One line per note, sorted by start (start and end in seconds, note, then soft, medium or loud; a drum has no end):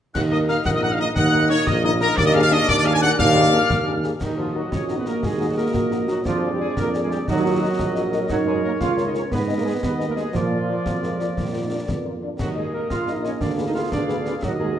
0.14 0.57 D#2 medium
0.14 2.14 A#2 medium
0.14 2.14 D#4 medium
0.14 0.62 A#4 medium
0.14 0.62 D#5 medium
0.14 0.22 F#5 loud
0.14 0.20 F#6 medium
0.14 concert bass drum medium
0.14 snare medium
0.14 crash medium
0.31 0.38 A#3 medium
0.31 0.38 D#4 medium
0.31 0.38 A#4 medium
0.31 0.39 D#5 medium
0.31 0.38 D#6 medium
0.48 0.55 A#3 medium
0.48 0.54 D#4 medium
0.48 0.55 A#4 medium
0.48 0.56 F5 medium
0.48 0.64 F6 medium
0.48 snare medium
0.65 1.08 A#1 medium
0.65 1.13 A#4 medium
0.65 1.13 D#5 medium
0.65 0.69 F#5 loud
0.65 0.69 F#6 medium
0.65 concert bass drum medium
0.65 snare medium
0.75 0.78 D#5 medium
0.75 0.84 D#6 medium
0.82 0.88 A#3 medium
0.82 0.88 D#4 medium
0.82 0.88 A#4 medium
0.82 0.90 F#5 loud
0.82 0.90 F#6 medium
0.91 1.00 F5 medium
0.91 0.94 F6 medium
0.99 1.05 A#3 medium
0.99 1.05 D#4 medium
0.99 1.05 A#4 medium
0.99 1.08 D#5 loud
0.99 1.06 D#6 medium
1.16 1.59 D#2 loud
1.16 1.64 A#4 medium
1.16 1.64 D#5 medium
1.16 1.47 F#5 loud
1.16 1.51 F#6 loud
1.16 concert bass drum medium
1.16 snare medium
1.33 1.39 A#3 medium
1.33 1.39 D#4 medium
1.33 1.39 A#4 medium
1.49 1.57 A#3 medium
1.49 1.57 D#4 medium
1.49 1.56 A#4 medium
1.49 1.66 C#5 loud
1.49 1.65 C#6 medium
1.49 snare medium
1.66 2.10 A#1 loud
1.66 2.15 A#4 medium
1.66 1.83 D#5 loud
1.66 2.15 D#5 medium
1.66 1.72 D#6 medium
1.66 concert bass drum medium
1.66 snare medium
1.84 1.90 A#3 medium
1.84 1.91 D#4 medium
1.84 1.91 A#4 medium
1.84 1.91 D#5 loud
1.84 1.90 D#6 medium
2.00 2.07 A#3 medium
2.00 2.07 D#4 medium
2.00 2.07 A#4 medium
2.00 2.17 A#4 loud
2.00 2.17 A#5 loud
2.00 snare medium
2.17 2.60 D#2 loud
2.17 4.00 A#2 medium
2.17 4.00 D4 loud
2.17 2.66 A#4 medium
2.17 2.26 D5 loud
2.17 2.69 D5 medium
2.17 2.22 D6 loud
2.17 concert bass drum medium
2.17 snare medium
2.26 2.34 D#5 loud
2.26 2.34 D#6 medium
2.34 2.41 A#3 medium
2.34 2.41 D4 medium
2.34 2.41 G#4 medium
2.34 2.42 F5 loud
2.34 2.39 F6 loud
2.43 2.51 F5 loud
2.43 2.51 F6 loud
2.51 2.58 A#3 medium
2.51 2.58 D4 medium
2.51 2.57 G#4 medium
2.51 2.69 D#5 loud
2.51 2.58 D#6 medium
2.51 snare medium
2.68 3.11 D#2 loud
2.68 3.16 A#4 medium
2.68 2.76 D5 loud
2.68 3.17 D5 medium
2.68 2.75 D6 loud
2.68 concert bass drum medium
2.68 snare medium
2.76 2.85 D5 loud
2.76 2.80 D6 medium
2.85 2.92 A#3 medium
2.85 2.92 D4 medium
2.85 2.92 G#4 medium
2.85 2.94 F5 loud
2.85 2.92 F6 medium
2.93 3.02 G#5 loud
2.93 3.00 G#6 medium
3.01 3.09 A#3 medium
3.01 3.09 D4 medium
3.01 3.09 G#4 medium
3.01 3.10 F#5 loud
3.01 3.20 F#6 loud
3.19 3.62 D#2 loud
3.19 4.00 A#4 medium
3.19 4.00 D5 medium
3.19 4.00 F5 loud
3.19 4.04 F6 loud
3.19 concert bass drum medium
3.19 snare medium
3.36 3.42 A#3 medium
3.36 3.42 D4 medium
3.36 3.42 G#4 medium
3.52 3.59 A#3 medium
3.52 3.58 D4 medium
3.52 3.59 G#4 medium
3.52 snare medium
3.70 4.13 D#2 medium
3.70 concert bass drum medium
3.70 snare medium
3.87 3.94 A#3 medium
3.87 3.94 D4 medium
3.87 3.93 G#4 medium
4.04 4.10 A#3 medium
4.04 4.10 D4 medium
4.04 4.10 G#4 medium
4.04 snare medium
4.20 4.64 D#2 medium
4.20 4.37 D#3 medium
4.20 4.38 D#4 medium
4.20 6.22 F#4 medium
4.20 6.22 D#5 medium
4.20 concert bass drum medium
4.20 snare medium
4.20 crash soft
4.37 4.54 F3 medium
4.37 4.44 D#4 medium
4.37 4.56 F4 medium
4.37 4.44 F#4 soft
4.37 4.44 A#4 medium
4.55 4.73 F#3 medium
4.55 4.61 D#4 soft
4.55 4.61 F#4 soft
4.55 4.73 F#4 medium
4.55 4.61 A#4 soft
4.72 5.15 A#1 medium
4.72 4.98 C#4 medium
4.72 5.20 F#4 medium
4.72 4.83 C#5 medium
4.72 concert bass drum medium
4.72 snare medium
4.89 4.96 D#4 soft
4.89 4.95 F#4 soft
4.89 4.95 A#4 soft
4.89 snare soft
4.98 5.06 B3 medium
4.98 5.06 B4 soft
5.06 5.22 A#3 medium
5.06 5.12 D#4 medium
5.06 5.12 F#4 soft
5.06 5.12 A#4 soft
5.06 5.23 A#4 medium
5.06 snare soft
5.23 5.66 D#2 medium
5.23 5.49 G#3 medium
5.23 5.71 G#4 medium
5.23 5.47 G#4 medium
5.23 concert bass drum medium
5.23 snare medium
5.40 5.46 D#4 soft
5.40 5.46 F#4 medium
5.40 5.46 A#4 soft
5.48 5.57 F#3 medium
5.48 5.52 F#4 medium
5.57 6.08 A#3 medium
5.57 5.63 D#4 soft
5.57 5.63 F#4 medium
5.57 5.63 A#4 soft
5.57 6.04 A#4 medium
5.74 6.18 A#1 medium
5.74 6.22 F#4 medium
5.74 concert bass drum medium
5.74 snare medium
5.91 5.97 D#4 soft
5.91 5.98 F#4 soft
5.91 5.98 A#4 soft
5.91 snare soft
6.08 6.24 F#3 medium
6.08 6.14 D#4 medium
6.08 6.14 F#4 medium
6.08 6.17 F#4 medium
6.08 6.14 A#4 medium
6.08 snare medium
6.25 6.69 F2 medium
6.25 6.49 F3 medium
6.25 7.24 D4 medium
6.25 6.50 F4 medium
6.25 7.24 G#4 medium
6.25 7.24 D5 medium
6.25 concert bass drum medium
6.25 snare medium
6.43 6.49 G#4 medium
6.43 6.49 D5 medium
6.51 6.59 G3 medium
6.51 6.60 G4 medium
6.60 6.77 G#3 medium
6.60 6.66 G#4 medium
6.60 6.76 G#4 medium
6.60 6.67 D5 medium
6.77 7.20 F2 medium
6.77 6.89 A#3 medium
6.77 6.88 A#4 medium
6.77 concert bass drum medium
6.77 snare medium
6.94 7.00 G#4 medium
6.94 7.00 D5 soft
6.94 snare soft
7.02 7.08 G#3 medium
7.02 7.06 G#4 medium
7.11 7.19 G3 medium
7.11 7.19 G4 medium
7.11 7.17 G#4 medium
7.11 7.17 D5 medium
7.11 snare medium
7.27 7.67 D#2 medium
7.27 8.26 F#3 loud
7.27 7.47 D#4 medium
7.27 8.26 F#4 medium
7.27 9.32 A#4 medium
7.27 8.30 D#5 medium
7.27 concert bass drum medium
7.27 snare medium
7.45 7.63 F4 medium
7.45 7.51 F#4 medium
7.45 7.51 A#4 medium
7.45 7.51 D#5 medium
7.61 7.67 F#4 medium
7.61 8.29 F#4 medium
7.61 7.67 A#4 medium
7.61 7.67 D#5 medium
7.79 8.22 A#1 medium
7.79 concert bass drum medium
7.79 snare medium
7.95 8.01 F#4 medium
7.95 8.02 A#4 medium
7.95 8.01 D#5 medium
7.95 snare soft
8.13 8.19 F#4 medium
8.13 8.19 A#4 medium
8.13 8.19 D#5 medium
8.13 snare soft
8.29 8.73 F#2 medium
8.29 8.37 F#3 loud
8.29 8.83 D#4 medium
8.29 8.37 F#4 medium
8.29 9.28 C#5 medium
8.29 concert bass drum medium
8.29 snare medium
8.29 crash soft
8.46 8.62 G#3 medium
8.46 8.62 G#4 medium
8.46 8.52 A#4 medium
8.46 8.53 C#5 medium
8.63 8.72 A#3 medium
8.63 8.71 A#4 medium
8.63 8.70 A#4 medium
8.63 8.70 C#5 medium
8.80 9.24 C#2 medium
8.80 9.32 C#4 medium
8.80 9.04 F4 medium
8.80 8.92 F5 medium
8.80 concert bass drum medium
8.80 snare medium
8.97 9.03 A#4 medium
8.97 9.03 C#5 medium
8.97 snare soft
9.06 9.15 D#4 medium
9.06 9.10 D#5 medium
9.14 9.23 C#4 medium
9.14 9.20 A#4 medium
9.14 9.21 C#5 medium
9.14 9.23 C#5 medium
9.14 snare soft
9.31 9.75 G#2 medium
9.31 9.42 B3 medium
9.31 10.30 B3 medium
9.31 9.43 B4 medium
9.31 10.31 B4 medium
9.31 10.34 D#5 medium
9.31 concert bass drum medium
9.31 snare medium
9.48 9.55 G#4 medium
9.48 9.55 B4 medium
9.48 9.55 D#5 medium
9.56 9.60 A#3 medium
9.56 9.61 A#4 medium
9.64 9.73 G#3 medium
9.64 9.72 G#4 medium
9.64 9.72 G#4 soft
9.64 9.71 B4 soft
9.64 9.72 D#5 soft
9.82 10.26 D#2 medium
9.82 10.07 B3 medium
9.82 9.94 B4 medium
9.82 concert bass drum medium
9.82 snare medium
9.99 10.05 G#4 soft
9.99 10.05 B4 soft
9.99 10.05 D#5 soft
9.99 snare soft
10.07 10.16 A#3 medium
10.07 10.12 A#4 medium
10.15 10.24 G#3 medium
10.15 10.32 G#4 medium
10.15 10.24 G#4 soft
10.15 10.23 B4 soft
10.15 10.23 D#5 soft
10.15 snare soft
10.33 10.77 A#2 medium
10.33 11.83 F3 medium
10.33 10.78 A#3 medium
10.33 11.84 F4 medium
10.33 12.22 A#4 soft
10.33 12.18 D5 medium
10.33 concert bass drum medium
10.33 snare medium
10.50 10.57 F4 soft
10.50 10.57 A#4 soft
10.50 10.57 D5 soft
10.69 10.75 F4 soft
10.69 10.75 A#4 soft
10.69 10.75 D5 soft
10.86 11.28 F2 soft
10.86 11.05 F#3 medium
10.86 concert bass drum medium
10.86 snare medium
11.03 11.22 G#3 medium
11.03 11.09 F4 soft
11.03 11.09 A#4 soft
11.03 11.09 D5 soft
11.03 snare soft
11.19 11.36 A#3 medium
11.19 11.26 F4 soft
11.19 11.25 A#4 soft
11.19 11.26 D5 soft
11.19 snare soft
11.37 11.80 A#2 medium
11.37 11.48 F4 medium
11.37 concert bass drum medium
11.37 snare medium
11.53 11.60 F4 soft
11.53 11.60 A#4 soft
11.53 11.59 D5 soft
11.65 11.68 D#4 soft
11.71 11.90 D4 medium
11.71 11.77 F4 soft
11.71 11.77 A#4 soft
11.71 11.77 D5 soft
11.88 12.31 F2 medium
11.88 12.16 B3 medium
11.88 concert bass drum medium
11.88 snare medium
12.05 12.11 F4 soft
12.05 12.11 A#4 soft
12.05 12.11 D5 soft
12.15 12.22 A#3 soft
12.22 12.39 D4 medium
12.22 12.28 F4 soft
12.22 12.28 A#4 soft
12.22 12.28 D5 soft
12.39 12.82 D#2 medium
12.39 12.55 F#3 medium
12.39 12.47 F#4 medium
12.39 13.37 A#4 soft
12.39 13.37 D#5 soft
12.39 concert bass drum medium
12.39 snare medium
12.39 crash soft
12.56 12.64 G#3 medium
12.56 12.62 D#4 medium
12.56 12.73 G#4 medium
12.56 12.62 A#4 soft
12.56 12.62 D#5 medium
12.72 12.89 A#3 medium
12.72 12.79 D#4 soft
12.72 12.89 A#4 medium
12.72 12.79 A#4 soft
12.72 12.79 D#5 soft
12.90 13.33 A#1 medium
12.90 13.88 A#3 medium
12.90 13.13 F4 medium
12.90 13.14 F5 medium
12.90 concert bass drum medium
12.90 snare medium
13.07 13.14 D#4 soft
13.07 13.14 A#4 soft
13.07 13.14 D#5 soft
13.07 snare soft
13.15 13.24 D#4 medium
13.15 13.24 D#5 soft
13.23 13.41 C#4 medium
13.23 13.30 D#4 soft
13.23 13.30 A#4 soft
13.23 13.32 C#5 medium
13.23 13.29 D#5 soft
13.23 snare soft
13.40 13.83 D2 medium
13.40 13.66 D4 medium
13.40 14.43 G#4 soft
13.40 13.52 D5 medium
13.40 14.43 F5 soft
13.40 concert bass drum medium
13.40 snare medium
13.58 13.65 F4 medium
13.58 13.64 G#4 soft
13.58 13.64 B4 soft
13.66 13.71 D#4 medium
13.66 13.74 D#5 medium
13.74 13.91 F4 medium
13.74 13.82 F4 soft
13.74 13.82 G#4 soft
13.74 13.82 B4 soft
13.74 13.82 F5 medium
13.91 14.35 D2 medium
13.91 14.39 B3 medium
13.91 14.24 D4 medium
13.91 14.23 D5 medium
13.91 concert bass drum medium
13.91 snare medium
14.09 14.16 F4 medium
14.09 14.15 G#4 soft
14.09 14.16 B4 soft
14.09 snare soft
14.25 14.33 D4 medium
14.25 14.33 F4 medium
14.25 14.33 G#4 medium
14.25 14.33 B4 medium
14.25 14.34 D5 medium
14.25 snare soft
14.42 14.79 D#2 medium
14.42 14.50 F#3 medium
14.42 14.51 F#4 medium
14.42 14.79 F#4 medium
14.42 14.79 A#4 medium
14.42 14.79 D#5 medium
14.42 concert bass drum medium
14.42 snare medium
14.59 14.77 G#3 medium
14.59 14.66 D#4 medium
14.59 14.66 F#4 medium
14.59 14.75 G#4 medium
14.59 14.66 A#4 medium